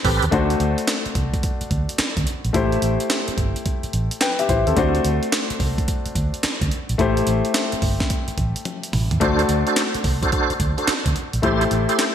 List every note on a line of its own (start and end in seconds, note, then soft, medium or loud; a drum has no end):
0.00 0.28 A3 medium
0.00 0.28 C4 medium
0.00 0.28 G4 medium
0.00 0.29 B4 medium
0.04 0.19 A1 medium
0.04 0.26 C4 medium
0.04 0.26 G4 medium
0.04 0.26 A4 medium
0.04 0.26 B4 medium
0.04 kick loud
0.04 open hi-hat medium
0.22 0.30 D#2 medium
0.22 closed hi-hat medium
0.31 0.54 D2 loud
0.31 2.50 A3 medium
0.31 2.50 D4 medium
0.31 2.51 F#4 medium
0.31 2.51 C5 medium
0.31 kick loud
0.31 closed hi-hat medium
0.50 closed hi-hat medium
0.60 0.74 D2 medium
0.60 closed hi-hat medium
0.78 closed hi-hat medium
0.88 snare loud
0.88 clap medium
0.88 closed hi-hat medium
1.06 muted fingered electric bass stroke soft
1.06 closed hi-hat soft
1.15 1.29 C2 medium
1.15 kick loud
1.15 closed hi-hat medium
1.34 kick loud
1.34 closed hi-hat soft
1.43 kick loud
1.43 closed hi-hat medium
1.61 muted fingered electric bass stroke soft
1.61 closed hi-hat soft
1.71 1.85 D2 medium
1.71 kick medium
1.71 closed hi-hat medium
1.89 closed hi-hat medium
1.99 muted fingered electric bass stroke soft
1.99 snare loud
1.99 clap medium
1.99 closed hi-hat medium
2.17 2.25 D2 medium
2.17 kick medium
2.17 closed hi-hat medium
2.27 closed hi-hat medium
2.45 2.52 A#1 medium
2.45 closed hi-hat soft
2.53 2.76 A1 loud
2.53 4.17 A3 medium
2.53 4.18 E4 medium
2.53 4.18 G4 medium
2.53 4.18 C5 medium
2.53 kick loud
2.53 closed hi-hat medium
2.72 closed hi-hat medium
2.82 2.96 A1 medium
2.82 closed hi-hat medium
3.00 closed hi-hat medium
3.10 snare loud
3.10 clap medium
3.10 closed hi-hat medium
3.28 muted fingered electric bass stroke soft
3.28 closed hi-hat medium
3.38 3.52 G1 medium
3.38 kick medium
3.38 closed hi-hat medium
3.56 closed hi-hat soft
3.66 kick medium
3.66 closed hi-hat medium
3.83 muted fingered electric bass stroke soft
3.83 closed hi-hat soft
3.93 4.07 A1 loud
3.93 closed hi-hat medium
4.11 closed hi-hat medium
4.21 4.38 B4 medium
4.21 4.38 G5 medium
4.21 snare loud
4.21 clap loud
4.21 closed hi-hat medium
4.39 4.49 G4 medium
4.39 4.49 E5 medium
4.39 closed hi-hat medium
4.49 4.63 A1 medium
4.49 4.67 E4 medium
4.49 4.66 C5 medium
4.49 kick loud
4.49 closed hi-hat medium
4.67 4.75 D#2 medium
4.67 4.94 C4 medium
4.67 4.93 A4 medium
4.67 closed hi-hat medium
4.76 4.98 D2 loud
4.76 6.95 A3 medium
4.76 6.95 D4 medium
4.76 6.95 F#4 medium
4.76 6.96 C5 medium
4.76 kick loud
4.76 closed hi-hat medium
4.95 closed hi-hat soft
5.05 5.19 D2 loud
5.05 closed hi-hat medium
5.23 closed hi-hat medium
5.32 snare loud
5.32 clap medium
5.32 closed hi-hat medium
5.50 muted fingered electric bass stroke soft
5.50 closed hi-hat medium
5.60 5.74 C2 loud
5.60 kick medium
5.60 open hi-hat medium
5.78 kick loud
5.78 closed hi-hat soft
5.88 kick medium
5.88 closed hi-hat medium
6.06 muted fingered electric bass stroke soft
6.06 closed hi-hat soft
6.15 6.29 D2 loud
6.15 kick loud
6.15 closed hi-hat medium
6.34 closed hi-hat medium
6.43 muted fingered electric bass stroke soft
6.43 snare loud
6.43 clap medium
6.43 closed hi-hat medium
6.61 6.69 D2 medium
6.61 kick medium
6.61 closed hi-hat medium
6.71 closed hi-hat medium
6.89 6.97 A#1 medium
6.89 closed hi-hat soft
6.98 7.21 A1 loud
6.98 9.17 A3 medium
6.98 9.17 E4 medium
6.98 9.18 G4 medium
6.98 9.18 C5 medium
6.98 kick loud
6.98 closed hi-hat medium
7.17 closed hi-hat medium
7.27 7.41 A1 medium
7.27 closed hi-hat medium
7.45 closed hi-hat medium
7.54 snare loud
7.54 clap medium
7.54 closed hi-hat medium
7.72 muted fingered electric bass stroke soft
7.72 closed hi-hat soft
7.82 7.96 G1 medium
7.82 kick medium
7.82 open hi-hat medium
8.00 kick medium
8.00 snare medium
8.00 closed hi-hat soft
8.10 kick medium
8.10 closed hi-hat medium
8.28 muted fingered electric bass stroke soft
8.28 closed hi-hat soft
8.38 8.52 A1 medium
8.38 kick medium
8.38 closed hi-hat medium
8.56 closed hi-hat medium
8.65 closed hi-hat medium
8.65 high tom medium
8.83 closed hi-hat medium
8.93 9.07 A1 medium
8.93 mid tom medium
8.93 open hi-hat medium
9.11 9.19 D#2 medium
9.11 closed hi-hat medium
9.11 floor tom medium
9.20 9.43 D2 loud
9.20 11.39 A3 medium
9.20 9.42 D4 medium
9.20 11.39 D4 medium
9.20 9.42 F#4 medium
9.20 11.40 F#4 medium
9.20 9.42 A4 medium
9.20 9.43 C5 loud
9.20 11.40 C5 medium
9.20 kick loud
9.20 closed hi-hat medium
9.39 closed hi-hat medium
9.49 9.63 D2 medium
9.49 closed hi-hat medium
9.67 9.83 D4 medium
9.67 9.83 F#4 medium
9.67 9.83 A4 medium
9.67 9.83 C5 medium
9.67 closed hi-hat medium
9.76 snare loud
9.76 clap medium
9.76 closed hi-hat medium
9.94 muted fingered electric bass stroke soft
9.94 closed hi-hat medium
10.04 10.18 C2 medium
10.04 kick medium
10.04 open hi-hat medium
10.22 10.31 D4 medium
10.22 10.31 F#4 medium
10.22 10.31 A4 medium
10.22 10.31 C5 medium
10.22 kick loud
10.22 closed hi-hat medium
10.32 10.53 D4 medium
10.32 10.53 F#4 medium
10.32 10.54 A4 medium
10.32 10.54 C5 medium
10.32 kick medium
10.32 closed hi-hat medium
10.50 muted fingered electric bass stroke medium
10.50 closed hi-hat soft
10.60 10.74 D2 medium
10.60 kick loud
10.60 closed hi-hat medium
10.78 10.94 D4 medium
10.78 10.94 F#4 medium
10.78 10.94 A4 medium
10.78 10.94 C5 medium
10.78 closed hi-hat medium
10.88 muted fingered electric bass stroke soft
10.88 snare loud
10.88 clap loud
10.88 closed hi-hat medium
11.06 11.13 D2 medium
11.06 kick medium
11.06 closed hi-hat medium
11.16 closed hi-hat medium
11.33 11.41 A#1 medium
11.33 closed hi-hat medium
11.42 11.65 A1 loud
11.42 12.15 A3 medium
11.42 12.15 E4 medium
11.42 11.64 E4 medium
11.42 11.65 G4 medium
11.42 12.15 G4 medium
11.42 11.65 A4 medium
11.42 11.65 C5 loud
11.42 12.15 C5 medium
11.42 kick loud
11.42 closed hi-hat medium
11.61 closed hi-hat medium
11.71 11.85 A1 medium
11.71 closed hi-hat medium
11.89 12.05 E4 medium
11.89 12.05 G4 medium
11.89 12.05 A4 medium
11.89 12.05 C5 medium
11.89 closed hi-hat medium
11.99 snare loud
11.99 clap medium
11.99 closed hi-hat medium